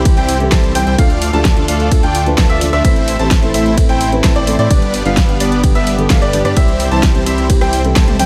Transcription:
Already playing: detuned saw bass C2, string section C3 C4 E4 G4
0.05 felt piano E3 G3 C4 G4, kick, closed hi-hat, ride
0.17 detuned saw bass C2, supersaw synth G3 C4 E4 C5 G5, grand piano G5, closed hi-hat
0.29 open hi-hat
0.40 felt piano E3 G3 C4 A4, closed hi-hat
0.52 detuned saw bass C2, supersaw synth G3 C4 E4 C5 A5, grand piano A5, kick, cross-stick, snare, closed hi-hat, ride
0.64 closed hi-hat
0.75 detuned saw bass C2, felt piano E3 G3 C4 G4, supersaw synth G3 C4 E4 C5 G5, grand piano G5, open hi-hat
0.87 detuned saw bass C2, supersaw synth G3 C4 E4 C5 G5, grand piano G5, closed hi-hat
0.98 detuned saw bass D2, string section D3 D4 F4 A4, felt piano F3 A3 D4 A4, supersaw synth A3 D4 F4 D5 F5, grand piano F5, kick, closed hi-hat, ride
1.10 closed hi-hat
1.22 open hi-hat
1.33 detuned saw bass D2, felt piano F3 A3 D4 G4, supersaw synth A3 D4 F4 D5 A5, grand piano A5, closed hi-hat
1.45 kick, snare, closed hi-hat, ride
1.56 felt piano F3 A3 D4 A4, closed hi-hat
1.68 detuned saw bass D2, supersaw synth A3 D4 F4 D5 F5, grand piano F5, open hi-hat
1.80 closed hi-hat
1.91 felt piano F3 A3 D4 A4, kick, closed hi-hat, ride
2.03 detuned saw bass D2, supersaw synth A3 D4 F4 D5 G5, grand piano G5, closed hi-hat
2.15 open hi-hat
2.26 felt piano F3 A3 D4 B4, closed hi-hat
2.38 detuned saw bass D2, supersaw synth A3 D4 F4 D5 A5, grand piano A5, kick, snare, closed hi-hat, ride
2.50 detuned saw bass D2, supersaw synth A3 D4 F4 D5 E5, grand piano E5, closed hi-hat
2.61 felt piano F3 A3 D4 A4, open hi-hat
2.73 detuned saw bass D2, supersaw synth A3 D4 F4 D5 E5, grand piano E5, cross-stick, closed hi-hat
2.84 detuned saw bass A1, felt piano E3 A3 C4 A4, supersaw synth A3 C4 E4 C5 E5, string section A3 C4 E4, grand piano E5, kick, closed hi-hat, ride
2.96 closed hi-hat
3.08 open hi-hat
3.19 detuned saw bass A1, felt piano E3 A3 C4 G4, supersaw synth A3 C4 E4 C5 A5, grand piano A5, closed hi-hat
3.31 kick, snare, closed hi-hat, ride
3.42 felt piano E3 A3 C4 A4, closed hi-hat
3.54 detuned saw bass A1, supersaw synth A3 C4 E4 C5 E5, grand piano E5, open hi-hat
3.66 closed hi-hat
3.77 felt piano E3 A3 C4 A4, kick, closed hi-hat, ride
3.89 detuned saw bass A1, supersaw synth A3 C4 E4 C5 G5, grand piano G5, closed hi-hat
4.01 open hi-hat
4.12 felt piano E3 A3 C4 B4, closed hi-hat
4.24 detuned saw bass A1, supersaw synth A3 C4 E4 C5 A5, grand piano A5, kick, cross-stick, snare, closed hi-hat, ride
4.36 detuned saw bass A1, supersaw synth A3 C4 E4 C5 D5, grand piano D5, closed hi-hat
4.47 felt piano E3 A3 C4 A4, open hi-hat
4.59 detuned saw bass A2, supersaw synth A3 C4 E4 C5 D5, grand piano D5, closed hi-hat
4.70 detuned saw bass G1, felt piano D3 G3 B3 G4, supersaw synth G3 B3 D4 B4 D5, string section B3 D4 G4, grand piano D5, kick, closed hi-hat, ride
4.82 closed hi-hat
4.94 open hi-hat
5.05 detuned saw bass G1, felt piano D3 G3 B3 F4, supersaw synth G3 B3 D4 B4 F5, grand piano F5, closed hi-hat
5.17 kick, snare, closed hi-hat, ride
5.28 felt piano D3 G3 B3 G4, closed hi-hat
5.40 detuned saw bass G1, supersaw synth G3 B3 D4 B4 D5, grand piano D5, open hi-hat
5.52 closed hi-hat
5.63 felt piano D3 G3 B3 G4, kick, closed hi-hat, ride
5.75 detuned saw bass G1, supersaw synth G3 B3 D4 B4 E5, grand piano E5, closed hi-hat
5.87 open hi-hat
5.98 felt piano D3 G3 B3 A4, closed hi-hat
6.10 detuned saw bass G1, supersaw synth G3 B3 D4 B4 F5, grand piano F5, kick, snare, closed hi-hat, ride
6.22 detuned saw bass G1, supersaw synth G3 B3 D4 B4 D5, grand piano D5, closed hi-hat
6.33 felt piano D3 G3 B3 G4, open hi-hat
6.45 detuned saw bass G2, supersaw synth G3 B3 D4 B4 D5, grand piano D5, cross-stick, closed hi-hat
6.56 detuned saw bass C2, string section C3 C4 E4, felt piano E3 G3 C4 G4, supersaw synth G3 C4 E4 C5 E5, grand piano E5, kick, closed hi-hat, ride
6.68 closed hi-hat
6.80 open hi-hat
6.91 detuned saw bass C2, felt piano E3 G3 C4 E4, supersaw synth G3 C4 E4 C5 A5, grand piano A5, closed hi-hat
7.03 kick, snare, closed hi-hat, ride
7.14 felt piano E3 G3 C4 G4, closed hi-hat
7.26 detuned saw bass C2, supersaw synth G3 C4 E4 C5 E5, grand piano E5, open hi-hat
7.38 closed hi-hat
7.49 felt piano E3 G3 C4 G4, kick, closed hi-hat, ride
7.61 detuned saw bass C2, supersaw synth G3 C4 E4 C5 G5, grand piano G5, cross-stick, closed hi-hat
7.73 open hi-hat
7.84 felt piano E3 G3 C4 A4, closed hi-hat
7.96 detuned saw bass C2, supersaw synth G3 C4 E4 C5 A5, grand piano A5, kick, cross-stick, snare, closed hi-hat, high tom, ride
8.08 closed hi-hat, high tom
8.19 detuned saw bass C2, felt piano E3 G3 C4 G4, supersaw synth G3 C4 E4 C5 G5, grand piano G5, open hi-hat, mid tom

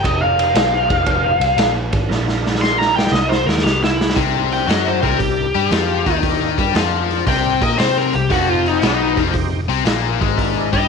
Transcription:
0.03 picked electric bass F1, tonewheel organ D#4 G4 A4, lead electric guitar D#5, kick, ride
0.22 lead electric guitar F5
0.39 tonewheel organ D#4 G4 C5, ride
0.55 picked electric bass B1, snare, ride
0.90 picked electric bass F1, kick, ride
1.06 picked electric bass F1, kick, ride
1.40 picked electric bass C2, ride
1.57 picked electric bass A#1, snare, ride
1.93 picked electric bass G#1, kick, ride
2.08 picked electric bass A#1, tonewheel organ D4 E4 A#4, snare
2.29 snare
2.41 tonewheel organ D4 E4 A#4
2.46 snare
2.55 snare
2.61 lead electric guitar C6, snare
2.78 lead electric guitar A#5, snare
2.96 lead electric guitar G5, snare
3.07 snare
3.12 picked electric bass C2, lead electric guitar D#5, snare
3.29 lead electric guitar C5, snare
3.46 picked electric bass D#2, lead electric guitar A#4, snare
3.58 snare
3.63 picked electric bass C2, lead electric guitar G4, snare
3.83 lead electric guitar E4, snare
4.01 snare
4.10 snare
4.16 picked electric bass C2, overdriven electric guitar C3 C4, tonewheel organ D4 E4 A#4, kick, open hi-hat
4.51 tonewheel organ D4 E4 A#4, lead electric guitar G5, open hi-hat
4.68 picked electric bass F#2, overdriven electric guitar F#3 F#4, lead electric guitar D#5, snare, open hi-hat
4.88 lead electric guitar C5
5.02 picked electric bass C2, overdriven electric guitar C3 C4, lead electric guitar A#4, kick, open hi-hat
5.18 picked electric bass C2, overdriven electric guitar C3, lead electric guitar G4, kick, open hi-hat
5.55 picked electric bass G2, overdriven electric guitar G3 G4, open hi-hat
5.70 picked electric bass F2, overdriven electric guitar F3 F4, snare, open hi-hat
6.06 picked electric bass D#2, overdriven electric guitar D#3 D#4, kick, open hi-hat
6.23 tonewheel organ D4 E4 G4, kick, open hi-hat
6.57 picked electric bass G2, overdriven electric guitar G3 G4, tonewheel organ D4 A#4, kick, open hi-hat
6.74 picked electric bass F2, overdriven electric guitar F3 F4, snare, open hi-hat
7.11 open hi-hat
7.26 picked electric bass C2, overdriven electric guitar C3 C4, lead electric guitar G5, kick, open hi-hat
7.61 picked electric bass A#2, overdriven electric guitar A#3 A#4, lead electric guitar D#5, kick, open hi-hat
7.78 picked electric bass C3, overdriven electric guitar C4 C5, lead electric guitar C5, snare, open hi-hat
7.98 lead electric guitar A#4
8.13 picked electric bass C2, overdriven electric guitar C3, lead electric guitar G4, open hi-hat
8.30 picked electric bass F1, overdriven electric guitar F2 F3, tonewheel organ D#4 G4 A4, lead electric guitar F#4, kick, open hi-hat
8.49 lead electric guitar F4
8.64 tonewheel organ D#4 G4 C5, lead electric guitar D#4, open hi-hat
8.82 picked electric bass B1, overdriven electric guitar B2 B3, snare, open hi-hat
8.86 lead electric guitar D#4
9.17 picked electric bass F1, overdriven electric guitar F2 F3, kick, open hi-hat
9.33 picked electric bass F1, overdriven electric guitar F2, kick, open hi-hat
9.68 picked electric bass C2, overdriven electric guitar C3 C4, open hi-hat
9.85 picked electric bass A#1, overdriven electric guitar A#2 A#3, snare, open hi-hat
10.21 picked electric bass G#1, overdriven electric guitar G#2 G#3, kick, open hi-hat
10.36 tonewheel organ D4 E4 A#4, kick, open hi-hat
10.73 picked electric bass G2, overdriven electric guitar G3 G4, tonewheel organ D4 A#4, lead electric guitar D#5, kick, open hi-hat

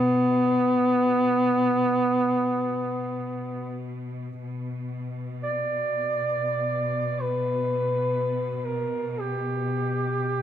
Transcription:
Already playing: string section B2, duduk B3
4.41 string section B2
5.43 duduk D5
7.22 duduk B4
8.54 duduk B4
8.65 duduk A#4
9.11 duduk A#4
9.20 duduk G4

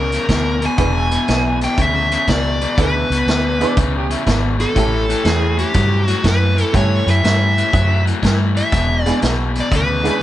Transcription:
Already playing: fingered electric bass C#2, honky-tonk piano B3 D4 E4 G#4 D5, lead electric guitar A#4
0.12 overdriven electric guitar E2 C#3, closed hi-hat
0.29 fingered electric bass D2, overdriven electric guitar E2 B2, kick, snare, closed hi-hat
0.61 overdriven electric guitar E2 B2, closed hi-hat
0.66 lead electric guitar G#5
0.77 fingered electric bass E1, overdriven electric guitar E2 B2, honky-tonk piano B3 D4 E4 G#4 B4, kick, closed hi-hat
1.11 overdriven electric guitar E2 B2, closed hi-hat
1.28 fingered electric bass B1, overdriven electric guitar E2 B2, snare, closed hi-hat
1.61 overdriven electric guitar E2 B2, lead electric guitar G5, snare, closed hi-hat
1.77 fingered electric bass D2, overdriven electric guitar E2 C#3, kick, closed hi-hat
1.82 lead electric guitar E5
2.11 overdriven electric guitar E2 C#3, lead electric guitar E5, closed hi-hat
2.27 fingered electric bass C#2, overdriven electric guitar E2 B2, lead electric guitar D5, kick, snare, closed hi-hat
2.61 overdriven electric guitar E2 B2, closed hi-hat
2.77 fingered electric bass D2, overdriven electric guitar E2 B2, honky-tonk piano B3 D4 E4 G#4 B4, kick, closed hi-hat
2.82 lead electric guitar B4
3.10 fingered electric bass C#2, overdriven electric guitar E2 B2, closed hi-hat
3.26 fingered electric bass D2, overdriven electric guitar E2 B2, snare, closed hi-hat
3.59 overdriven electric guitar E2 B2, honky-tonk piano B3 D4 E4 G#4 B4, harmonica D5, closed hi-hat
3.76 fingered electric bass C#2, overdriven electric guitar E2 C#3, harmonica B4, kick, closed hi-hat
3.97 harmonica G4
4.10 overdriven electric guitar E2 C#3, harmonica E4, closed hi-hat
4.26 fingered electric bass G#1, overdriven electric guitar E2 B2, kick, snare, closed hi-hat
4.58 overdriven electric guitar E2 B2, lead electric guitar A4, closed hi-hat
4.75 fingered electric bass A1, overdriven electric guitar A2 E3, honky-tonk piano A3 C#4 E4 G4 A4, kick, closed hi-hat
5.09 overdriven electric guitar A2 E3, closed hi-hat
5.24 fingered electric bass E2, overdriven electric guitar A2 E3, snare, closed hi-hat
5.29 lead electric guitar G#4
5.56 overdriven electric guitar A2 E3, lead electric guitar G4, closed hi-hat
5.73 fingered electric bass G2, overdriven electric guitar A2 F#3, kick, closed hi-hat
6.06 overdriven electric guitar A2 F#3, lead electric guitar F#4, closed hi-hat
6.23 fingered electric bass F#2, overdriven electric guitar A2 E3, kick, snare, closed hi-hat
6.28 lead electric guitar B4
6.56 overdriven electric guitar A2 E3, closed hi-hat
6.73 fingered electric bass G2, overdriven electric guitar A2 E3, honky-tonk piano A3 C#4 E4 G4 A4, kick, closed hi-hat
6.77 lead electric guitar C#5
7.06 fingered electric bass F#2, overdriven electric guitar A2 E3, closed hi-hat
7.10 lead electric guitar E5
7.23 fingered electric bass G2, overdriven electric guitar A2 E3, snare, closed hi-hat
7.57 overdriven electric guitar A2 E3, closed hi-hat
7.72 fingered electric bass F#2, overdriven electric guitar A2 F#3, kick, closed hi-hat
8.04 overdriven electric guitar A2 F#3, closed hi-hat
8.22 fingered electric bass G2, overdriven electric guitar A2 E3, kick, snare, closed hi-hat
8.55 overdriven electric guitar A2 E3, lead electric guitar E5, closed hi-hat
8.71 fingered electric bass E1, overdriven electric guitar E2 B2, kick, closed hi-hat
9.02 overdriven electric guitar E2 B2, honky-tonk piano G#3 B3, lead electric guitar D5, closed hi-hat
9.07 honky-tonk piano D4 E4 G#4
9.21 fingered electric bass B1, overdriven electric guitar E2 B2, snare, closed hi-hat
9.54 overdriven electric guitar E2 B2, closed hi-hat
9.60 lead electric guitar D5
9.71 fingered electric bass D2, overdriven electric guitar E2 C#3, kick, closed hi-hat
9.76 lead electric guitar B4
10.03 overdriven electric guitar E2 C#3, honky-tonk piano G#3 B3 D4 E4 G#4, closed hi-hat

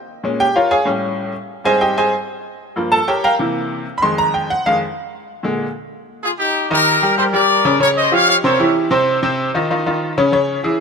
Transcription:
0.24 upright piano A#2 G#3 C#4
0.40 upright piano G4 G5
0.56 upright piano F4 A#4 C#5 F5
0.71 upright piano G#4 C#5 F5 G#5
0.85 upright piano A2 G3 C#4
1.64 upright piano G#2 G3 C4 G#4 C5 D#5 G#5
1.81 upright piano G4 C5 D#5 G5
1.98 upright piano G#4 C5 D#5 G#5
2.76 upright piano G2 F3 A#3
2.92 upright piano A4 A5
3.08 upright piano G4 A#4 C#5 G5
3.24 upright piano A#4 F5 G5 A#5
3.39 upright piano C3 E3 A#3
3.98 upright piano F2 B5
4.02 upright piano D#3 G#3 C6
4.18 upright piano A#5
4.34 upright piano G5
4.50 upright piano F#5
4.66 upright piano F2 D#3 G#3 F5
5.43 upright piano A#2 D3 G#3
6.24 trumpet section F4 G#4
6.38 trumpet section D#4 G4
6.70 upright piano D#3 D#4 D#5, trumpet section G4 A#4
7.02 upright piano G3 G4 A#4
7.18 upright piano G3 G4 A#4, trumpet section G4 C5
7.33 upright piano G3 G4 A#4, trumpet section A#4 D5
7.65 upright piano C#3 C#4 C#5
7.80 upright piano C#3 C#4 C#5, trumpet section A#4 C#5
7.97 trumpet section C5 D#5
8.12 upright piano F3 F4 G4, trumpet section C#5 F5
8.29 trumpet section C#5 F5
8.44 upright piano C3 C4 C5, trumpet section A#4 C#5
8.60 upright piano E3 E4 G4
8.91 upright piano C3 C4 C5
9.23 upright piano C3 C4 C5
9.55 upright piano D#3 D#4 F4
9.70 upright piano D#3 D#4 F4
9.86 upright piano D#3 D#4 F4
10.18 upright piano C#3 C#4 C#5
10.32 upright piano C#3 C#4 C#5
10.64 upright piano E3 E4 G#4

